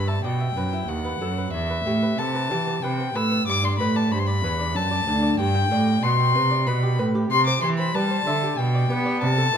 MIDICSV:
0, 0, Header, 1, 4, 480
1, 0, Start_track
1, 0, Tempo, 648649
1, 1131, Time_signature, 3, 2, 24, 8
1, 2096, Tempo, 638298
1, 7166, End_track
2, 0, Start_track
2, 0, Title_t, "Violin"
2, 0, Program_c, 0, 40
2, 56, Note_on_c, 0, 81, 61
2, 176, Note_off_c, 0, 81, 0
2, 182, Note_on_c, 0, 79, 62
2, 653, Note_on_c, 0, 78, 71
2, 664, Note_off_c, 0, 79, 0
2, 1127, Note_off_c, 0, 78, 0
2, 1132, Note_on_c, 0, 76, 75
2, 1614, Note_on_c, 0, 81, 77
2, 1625, Note_off_c, 0, 76, 0
2, 2089, Note_on_c, 0, 79, 65
2, 2100, Note_off_c, 0, 81, 0
2, 2339, Note_on_c, 0, 88, 77
2, 2350, Note_off_c, 0, 79, 0
2, 2574, Note_off_c, 0, 88, 0
2, 2579, Note_on_c, 0, 86, 83
2, 2703, Note_on_c, 0, 84, 73
2, 2715, Note_off_c, 0, 86, 0
2, 2807, Note_off_c, 0, 84, 0
2, 2811, Note_on_c, 0, 83, 73
2, 2942, Note_on_c, 0, 81, 67
2, 2954, Note_off_c, 0, 83, 0
2, 3059, Note_on_c, 0, 83, 74
2, 3070, Note_off_c, 0, 81, 0
2, 3114, Note_on_c, 0, 84, 59
2, 3126, Note_off_c, 0, 83, 0
2, 3171, Note_on_c, 0, 83, 81
2, 3182, Note_off_c, 0, 84, 0
2, 3541, Note_on_c, 0, 81, 82
2, 3553, Note_off_c, 0, 83, 0
2, 4019, Note_off_c, 0, 81, 0
2, 4024, Note_on_c, 0, 79, 89
2, 4499, Note_on_c, 0, 84, 85
2, 4510, Note_off_c, 0, 79, 0
2, 4977, Note_on_c, 0, 83, 69
2, 4989, Note_off_c, 0, 84, 0
2, 5219, Note_off_c, 0, 83, 0
2, 5462, Note_on_c, 0, 84, 95
2, 5574, Note_off_c, 0, 84, 0
2, 5580, Note_on_c, 0, 86, 84
2, 5689, Note_off_c, 0, 86, 0
2, 5693, Note_on_c, 0, 84, 78
2, 5743, Note_off_c, 0, 84, 0
2, 5816, Note_on_c, 0, 83, 77
2, 5936, Note_on_c, 0, 81, 88
2, 5947, Note_off_c, 0, 83, 0
2, 6415, Note_on_c, 0, 79, 73
2, 6426, Note_off_c, 0, 81, 0
2, 6890, Note_off_c, 0, 79, 0
2, 6894, Note_on_c, 0, 81, 92
2, 7166, Note_off_c, 0, 81, 0
2, 7166, End_track
3, 0, Start_track
3, 0, Title_t, "Lute"
3, 0, Program_c, 1, 24
3, 0, Note_on_c, 1, 43, 40
3, 0, Note_on_c, 1, 71, 34
3, 55, Note_on_c, 1, 76, 36
3, 127, Note_off_c, 1, 71, 0
3, 151, Note_off_c, 1, 43, 0
3, 178, Note_on_c, 1, 47, 38
3, 180, Note_on_c, 1, 74, 32
3, 247, Note_off_c, 1, 76, 0
3, 296, Note_off_c, 1, 74, 0
3, 297, Note_on_c, 1, 76, 37
3, 393, Note_off_c, 1, 47, 0
3, 419, Note_off_c, 1, 76, 0
3, 420, Note_on_c, 1, 42, 43
3, 422, Note_on_c, 1, 71, 37
3, 539, Note_on_c, 1, 64, 38
3, 609, Note_off_c, 1, 71, 0
3, 633, Note_off_c, 1, 42, 0
3, 653, Note_on_c, 1, 39, 40
3, 656, Note_off_c, 1, 64, 0
3, 776, Note_on_c, 1, 71, 36
3, 868, Note_off_c, 1, 39, 0
3, 896, Note_on_c, 1, 42, 44
3, 900, Note_on_c, 1, 69, 38
3, 965, Note_off_c, 1, 71, 0
3, 1019, Note_on_c, 1, 71, 37
3, 1086, Note_off_c, 1, 69, 0
3, 1110, Note_off_c, 1, 42, 0
3, 1135, Note_off_c, 1, 71, 0
3, 1137, Note_on_c, 1, 40, 44
3, 1259, Note_on_c, 1, 71, 39
3, 1353, Note_off_c, 1, 40, 0
3, 1378, Note_on_c, 1, 45, 42
3, 1382, Note_on_c, 1, 67, 37
3, 1451, Note_off_c, 1, 71, 0
3, 1498, Note_on_c, 1, 71, 39
3, 1573, Note_off_c, 1, 67, 0
3, 1596, Note_off_c, 1, 45, 0
3, 1621, Note_on_c, 1, 48, 43
3, 1625, Note_on_c, 1, 69, 33
3, 1691, Note_off_c, 1, 71, 0
3, 1736, Note_on_c, 1, 71, 39
3, 1741, Note_off_c, 1, 69, 0
3, 1836, Note_off_c, 1, 48, 0
3, 1857, Note_on_c, 1, 52, 43
3, 1858, Note_on_c, 1, 67, 40
3, 1929, Note_off_c, 1, 71, 0
3, 1976, Note_on_c, 1, 59, 42
3, 2048, Note_off_c, 1, 67, 0
3, 2071, Note_off_c, 1, 52, 0
3, 2095, Note_off_c, 1, 59, 0
3, 2099, Note_on_c, 1, 48, 46
3, 2102, Note_on_c, 1, 71, 38
3, 2222, Note_on_c, 1, 59, 39
3, 2290, Note_off_c, 1, 71, 0
3, 2314, Note_off_c, 1, 48, 0
3, 2336, Note_on_c, 1, 45, 45
3, 2339, Note_off_c, 1, 59, 0
3, 2339, Note_on_c, 1, 71, 40
3, 2456, Note_on_c, 1, 59, 38
3, 2530, Note_off_c, 1, 71, 0
3, 2553, Note_off_c, 1, 45, 0
3, 2577, Note_off_c, 1, 59, 0
3, 2577, Note_on_c, 1, 43, 48
3, 2698, Note_on_c, 1, 74, 39
3, 2794, Note_off_c, 1, 43, 0
3, 2823, Note_on_c, 1, 45, 45
3, 2826, Note_on_c, 1, 71, 39
3, 2891, Note_off_c, 1, 74, 0
3, 2940, Note_on_c, 1, 74, 43
3, 3014, Note_off_c, 1, 71, 0
3, 3038, Note_off_c, 1, 45, 0
3, 3058, Note_on_c, 1, 43, 45
3, 3060, Note_on_c, 1, 72, 34
3, 3132, Note_off_c, 1, 74, 0
3, 3179, Note_off_c, 1, 72, 0
3, 3181, Note_on_c, 1, 74, 39
3, 3275, Note_off_c, 1, 43, 0
3, 3301, Note_off_c, 1, 74, 0
3, 3302, Note_on_c, 1, 40, 49
3, 3304, Note_on_c, 1, 71, 42
3, 3421, Note_on_c, 1, 62, 42
3, 3493, Note_off_c, 1, 71, 0
3, 3517, Note_off_c, 1, 40, 0
3, 3536, Note_on_c, 1, 42, 47
3, 3540, Note_off_c, 1, 62, 0
3, 3660, Note_on_c, 1, 74, 42
3, 3752, Note_off_c, 1, 42, 0
3, 3780, Note_on_c, 1, 38, 50
3, 3780, Note_on_c, 1, 62, 41
3, 3850, Note_off_c, 1, 74, 0
3, 3895, Note_on_c, 1, 74, 43
3, 3970, Note_off_c, 1, 62, 0
3, 3995, Note_off_c, 1, 38, 0
3, 4015, Note_on_c, 1, 43, 52
3, 4016, Note_off_c, 1, 74, 0
3, 4139, Note_on_c, 1, 79, 44
3, 4235, Note_off_c, 1, 43, 0
3, 4261, Note_on_c, 1, 45, 46
3, 4265, Note_on_c, 1, 74, 41
3, 4334, Note_off_c, 1, 79, 0
3, 4386, Note_on_c, 1, 79, 45
3, 4457, Note_off_c, 1, 74, 0
3, 4480, Note_off_c, 1, 45, 0
3, 4506, Note_off_c, 1, 79, 0
3, 4509, Note_on_c, 1, 47, 46
3, 4509, Note_on_c, 1, 78, 35
3, 4622, Note_off_c, 1, 78, 0
3, 4625, Note_on_c, 1, 79, 44
3, 4722, Note_off_c, 1, 47, 0
3, 4744, Note_on_c, 1, 48, 52
3, 4747, Note_on_c, 1, 71, 49
3, 4815, Note_off_c, 1, 79, 0
3, 4861, Note_on_c, 1, 74, 42
3, 4935, Note_off_c, 1, 71, 0
3, 4959, Note_off_c, 1, 48, 0
3, 4980, Note_on_c, 1, 47, 50
3, 4983, Note_on_c, 1, 71, 43
3, 5053, Note_off_c, 1, 74, 0
3, 5101, Note_on_c, 1, 67, 43
3, 5173, Note_off_c, 1, 71, 0
3, 5197, Note_off_c, 1, 47, 0
3, 5218, Note_on_c, 1, 45, 53
3, 5222, Note_on_c, 1, 71, 46
3, 5294, Note_off_c, 1, 67, 0
3, 5342, Note_on_c, 1, 67, 40
3, 5413, Note_off_c, 1, 71, 0
3, 5437, Note_off_c, 1, 45, 0
3, 5459, Note_on_c, 1, 48, 53
3, 5462, Note_off_c, 1, 67, 0
3, 5586, Note_on_c, 1, 72, 45
3, 5677, Note_off_c, 1, 48, 0
3, 5704, Note_on_c, 1, 52, 52
3, 5706, Note_on_c, 1, 67, 42
3, 5776, Note_off_c, 1, 72, 0
3, 5825, Note_on_c, 1, 72, 46
3, 5895, Note_off_c, 1, 67, 0
3, 5918, Note_off_c, 1, 52, 0
3, 5942, Note_off_c, 1, 72, 0
3, 5943, Note_on_c, 1, 55, 50
3, 5945, Note_on_c, 1, 71, 36
3, 6060, Note_off_c, 1, 71, 0
3, 6063, Note_on_c, 1, 72, 44
3, 6157, Note_off_c, 1, 55, 0
3, 6182, Note_on_c, 1, 50, 50
3, 6184, Note_on_c, 1, 76, 45
3, 6252, Note_off_c, 1, 72, 0
3, 6307, Note_on_c, 1, 67, 46
3, 6371, Note_off_c, 1, 76, 0
3, 6396, Note_off_c, 1, 50, 0
3, 6422, Note_off_c, 1, 67, 0
3, 6426, Note_on_c, 1, 47, 49
3, 6544, Note_on_c, 1, 74, 45
3, 6637, Note_off_c, 1, 47, 0
3, 6658, Note_on_c, 1, 59, 49
3, 6662, Note_on_c, 1, 67, 45
3, 6731, Note_off_c, 1, 74, 0
3, 6774, Note_on_c, 1, 74, 45
3, 6849, Note_off_c, 1, 67, 0
3, 6873, Note_off_c, 1, 59, 0
3, 6895, Note_off_c, 1, 74, 0
3, 6897, Note_on_c, 1, 48, 53
3, 7019, Note_on_c, 1, 69, 45
3, 7112, Note_off_c, 1, 48, 0
3, 7135, Note_on_c, 1, 47, 48
3, 7138, Note_on_c, 1, 64, 40
3, 7166, Note_off_c, 1, 47, 0
3, 7166, Note_off_c, 1, 64, 0
3, 7166, Note_off_c, 1, 69, 0
3, 7166, End_track
4, 0, Start_track
4, 0, Title_t, "Cello"
4, 0, Program_c, 2, 42
4, 0, Note_on_c, 2, 43, 50
4, 168, Note_off_c, 2, 43, 0
4, 172, Note_on_c, 2, 47, 52
4, 405, Note_off_c, 2, 47, 0
4, 409, Note_on_c, 2, 42, 45
4, 646, Note_off_c, 2, 42, 0
4, 651, Note_on_c, 2, 39, 50
4, 884, Note_off_c, 2, 39, 0
4, 889, Note_on_c, 2, 42, 50
4, 1125, Note_off_c, 2, 42, 0
4, 1128, Note_on_c, 2, 40, 57
4, 1367, Note_off_c, 2, 40, 0
4, 1371, Note_on_c, 2, 45, 54
4, 1611, Note_off_c, 2, 45, 0
4, 1616, Note_on_c, 2, 48, 57
4, 1861, Note_on_c, 2, 52, 51
4, 1873, Note_off_c, 2, 48, 0
4, 2091, Note_off_c, 2, 52, 0
4, 2096, Note_on_c, 2, 48, 55
4, 2332, Note_off_c, 2, 48, 0
4, 2336, Note_on_c, 2, 45, 55
4, 2570, Note_off_c, 2, 45, 0
4, 2575, Note_on_c, 2, 43, 58
4, 2812, Note_off_c, 2, 43, 0
4, 2816, Note_on_c, 2, 45, 58
4, 3057, Note_on_c, 2, 43, 60
4, 3068, Note_off_c, 2, 45, 0
4, 3295, Note_on_c, 2, 40, 57
4, 3307, Note_off_c, 2, 43, 0
4, 3536, Note_on_c, 2, 42, 59
4, 3547, Note_off_c, 2, 40, 0
4, 3769, Note_off_c, 2, 42, 0
4, 3773, Note_on_c, 2, 38, 58
4, 4004, Note_off_c, 2, 38, 0
4, 4009, Note_on_c, 2, 43, 68
4, 4246, Note_off_c, 2, 43, 0
4, 4251, Note_on_c, 2, 45, 64
4, 4494, Note_off_c, 2, 45, 0
4, 4497, Note_on_c, 2, 47, 57
4, 4736, Note_on_c, 2, 48, 59
4, 4748, Note_off_c, 2, 47, 0
4, 4977, Note_on_c, 2, 47, 62
4, 4988, Note_off_c, 2, 48, 0
4, 5218, Note_on_c, 2, 45, 58
4, 5230, Note_off_c, 2, 47, 0
4, 5452, Note_off_c, 2, 45, 0
4, 5457, Note_on_c, 2, 48, 67
4, 5682, Note_off_c, 2, 48, 0
4, 5699, Note_on_c, 2, 52, 65
4, 5935, Note_off_c, 2, 52, 0
4, 5944, Note_on_c, 2, 55, 63
4, 6176, Note_off_c, 2, 55, 0
4, 6181, Note_on_c, 2, 50, 59
4, 6414, Note_off_c, 2, 50, 0
4, 6422, Note_on_c, 2, 47, 62
4, 6654, Note_off_c, 2, 47, 0
4, 6665, Note_on_c, 2, 59, 64
4, 6902, Note_on_c, 2, 48, 65
4, 6913, Note_off_c, 2, 59, 0
4, 7136, Note_off_c, 2, 48, 0
4, 7141, Note_on_c, 2, 47, 61
4, 7166, Note_off_c, 2, 47, 0
4, 7166, End_track
0, 0, End_of_file